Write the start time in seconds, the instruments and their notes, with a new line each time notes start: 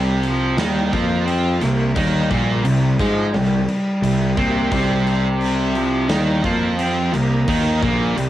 Already playing: picked electric bass C2, distorted electric guitar C3 C4, cello G3
0.23 cello F3, crash
0.57 picked electric bass D#2, distorted electric guitar D#3 D#4, cello G3, snare, crash
0.92 picked electric bass F2, distorted electric guitar F3 F4, cello A#3, kick, crash
1.26 cello C4, crash
1.60 picked electric bass C2, distorted electric guitar C3, cello A#3, snare, crash
1.94 picked electric bass D#2, distorted electric guitar D#3 D#4, cello G3, kick, crash
2.30 picked electric bass A#1, distorted electric guitar A#2 A#3, kick, crash
2.64 picked electric bass C2, distorted electric guitar C3, cello G3, crash
2.99 picked electric bass G#2, cello F3, distorted electric guitar G#3 G#4, kick, crash
3.32 picked electric bass C2, distorted electric guitar C3, cello G3, snare, crash
3.67 cello G3, crash
4.02 picked electric bass C2, distorted electric guitar C3, crash
4.36 picked electric bass C2, distorted electric guitar C3 C4, cello A#3, kick, crash
4.70 picked electric bass C2, distorted electric guitar C3 C4, cello G3, kick, crash
5.07 crash
5.39 cello G3, crash
5.74 cello F3, crash
6.09 picked electric bass D#2, distorted electric guitar D#3 D#4, cello G3, snare, crash
6.43 picked electric bass F2, distorted electric guitar F3 F4, cello A#3, kick, crash
6.78 cello C4, crash
7.13 picked electric bass C2, distorted electric guitar C3, cello A#3, crash
7.48 picked electric bass D#2, distorted electric guitar D#3 D#4, kick, crash
7.82 picked electric bass A#1, distorted electric guitar A#2 A#3, kick, crash
8.16 picked electric bass C2, distorted electric guitar C3, cello G3, crash